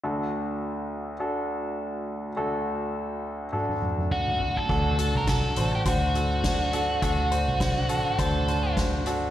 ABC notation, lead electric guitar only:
X:1
M:4/4
L:1/16
Q:"Swing 16ths" 1/4=103
K:Dphr
V:1 name="Lead electric guitar"
z16 | z12 ^F3 A- | A3 B A3 G ^F8 | ^F8 A4 z4 |]